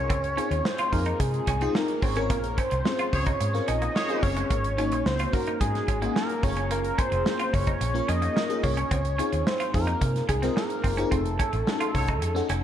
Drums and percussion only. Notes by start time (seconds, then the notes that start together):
0.10 kick, closed hi-hat
0.24 closed hi-hat
0.38 closed hi-hat
0.51 closed hi-hat
0.65 snare
0.78 closed hi-hat
0.93 kick, open hi-hat
1.06 closed hi-hat
1.20 kick, closed hi-hat
1.34 closed hi-hat
1.47 kick, closed hi-hat
1.61 closed hi-hat
1.75 snare
1.88 closed hi-hat
2.02 kick, open hi-hat
2.16 closed hi-hat
2.30 kick, closed hi-hat
2.44 closed hi-hat
2.58 kick, closed hi-hat
2.71 closed hi-hat
2.85 snare
2.99 closed hi-hat
3.13 kick, open hi-hat
3.26 kick, closed hi-hat
3.41 closed hi-hat
3.55 snare, closed hi-hat
3.68 closed hi-hat
3.82 closed hi-hat
3.96 snare
4.09 closed hi-hat
4.23 kick, open hi-hat
4.36 closed hi-hat
4.50 kick, closed hi-hat
4.64 closed hi-hat
4.78 closed hi-hat
4.92 closed hi-hat
5.06 snare
5.19 closed hi-hat
5.33 kick, open hi-hat
5.47 closed hi-hat
5.61 kick, closed hi-hat
5.75 snare, closed hi-hat
5.88 kick, closed hi-hat
6.02 closed hi-hat
6.16 snare
6.29 closed hi-hat
6.43 kick, open hi-hat
6.56 closed hi-hat
6.71 closed hi-hat
6.84 closed hi-hat
6.99 kick, closed hi-hat
7.12 closed hi-hat
7.26 snare
7.39 closed hi-hat
7.54 kick, open hi-hat
7.67 kick, closed hi-hat
7.81 closed hi-hat
7.95 closed hi-hat
8.09 closed hi-hat
8.22 closed hi-hat
8.37 snare
8.50 closed hi-hat
8.64 kick, open hi-hat
8.77 closed hi-hat
8.91 kick, closed hi-hat
9.05 closed hi-hat
9.19 closed hi-hat
9.33 closed hi-hat
9.47 snare
9.60 closed hi-hat
9.74 kick, open hi-hat
9.87 closed hi-hat
10.02 kick, closed hi-hat
10.16 snare, closed hi-hat
10.29 kick, closed hi-hat
10.43 snare, closed hi-hat
10.57 snare
10.70 closed hi-hat
10.84 kick, open hi-hat
10.98 closed hi-hat
11.12 kick, closed hi-hat
11.26 closed hi-hat
11.40 kick, closed hi-hat
11.53 closed hi-hat
11.67 snare
11.81 closed hi-hat
11.95 kick, open hi-hat
12.08 kick, closed hi-hat
12.22 closed hi-hat
12.36 snare, closed hi-hat
12.49 closed hi-hat